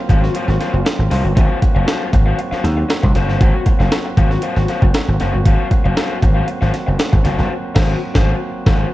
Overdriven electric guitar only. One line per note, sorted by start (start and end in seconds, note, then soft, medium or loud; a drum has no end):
0.09 0.28 F#4 medium
0.09 0.22 C5 medium
0.09 0.21 F5 medium
0.22 muted overdriven electric guitar stroke soft
0.34 0.53 F#4 medium
0.34 0.48 C5 loud
0.34 0.47 F5 medium
0.48 muted overdriven electric guitar stroke soft
0.60 0.75 F#4 medium
0.60 0.73 C5 medium
0.60 0.72 F5 medium
0.73 muted overdriven electric guitar stroke soft
0.85 muted overdriven electric guitar stroke soft
1.11 1.26 F#4 medium
1.11 1.24 C5 medium
1.11 1.23 F5 medium
1.24 muted overdriven electric guitar stroke soft
1.35 1.56 F#4 medium
1.35 1.57 C5 medium
1.35 1.57 F5 loud
1.62 muted overdriven electric guitar stroke soft
1.75 1.85 F#4 medium
1.75 1.86 C5 medium
1.75 1.86 F5 medium
1.86 2.06 F#4 medium
1.86 2.06 C5 medium
1.86 2.06 F5 medium
2.12 muted overdriven electric guitar stroke soft
2.26 2.37 F#4 medium
2.26 2.37 C5 medium
2.26 2.38 F5 medium
2.38 muted overdriven electric guitar stroke soft
2.51 2.63 F#4 medium
2.51 2.63 C5 medium
2.51 2.63 F5 medium
2.64 muted overdriven electric guitar stroke soft
2.77 muted overdriven electric guitar stroke soft
2.89 muted overdriven electric guitar stroke soft
3.03 muted overdriven electric guitar stroke medium
3.15 3.28 F#4 medium
3.15 3.28 C5 medium
3.15 3.27 F5 medium
3.29 3.39 F#4 soft
3.29 3.40 C5 medium
3.29 3.42 F5 medium
3.41 3.59 F#4 medium
3.41 3.54 C5 medium
3.41 3.54 F#5 loud
3.55 muted overdriven electric guitar stroke medium
3.66 muted overdriven electric guitar stroke medium
3.79 3.94 F#4 medium
3.79 3.93 C5 medium
3.79 3.93 F5 medium
4.05 muted overdriven electric guitar stroke soft
4.17 4.36 F#4 medium
4.17 4.31 C5 medium
4.17 4.30 F5 loud
4.31 muted overdriven electric guitar stroke soft
4.42 4.61 F#4 medium
4.42 4.56 C5 medium
4.42 4.55 F5 loud
4.56 muted overdriven electric guitar stroke medium
4.68 4.83 F#4 medium
4.68 4.82 C5 medium
4.68 4.81 F5 medium
4.83 muted overdriven electric guitar stroke medium
4.94 muted overdriven electric guitar stroke medium
5.20 5.35 F#4 medium
5.20 5.33 C5 medium
5.20 5.33 F5 medium
5.34 muted overdriven electric guitar stroke soft
5.46 5.64 F#4 medium
5.46 5.65 C5 medium
5.46 5.65 F5 loud
5.70 muted overdriven electric guitar stroke soft
5.85 5.95 F#4 medium
5.85 5.96 C5 medium
5.85 5.96 F5 medium
5.96 6.15 F#4 medium
5.96 6.15 C5 medium
5.96 6.15 F5 medium
6.22 muted overdriven electric guitar stroke soft
6.35 6.46 F#4 medium
6.35 6.46 C5 medium
6.35 6.47 F5 medium
6.47 muted overdriven electric guitar stroke soft
6.61 6.72 F#4 medium
6.61 6.72 C5 medium
6.61 6.73 F5 medium
6.73 muted overdriven electric guitar stroke soft
6.87 muted overdriven electric guitar stroke soft
6.99 muted overdriven electric guitar stroke soft
7.12 muted overdriven electric guitar stroke soft
7.24 7.38 F#4 medium
7.24 7.37 C5 medium
7.24 7.37 F5 medium
7.38 7.51 F#4 soft
7.38 7.50 C5 medium
7.38 7.50 F5 medium
7.75 7.94 F#4 loud
7.75 7.94 C5 loud
7.75 7.93 F5 loud
8.14 8.32 F#4 loud
8.14 8.32 C5 loud
8.14 8.33 F5 loud
8.66 8.84 F#4 loud
8.66 8.84 C5 loud
8.66 8.84 F5 loud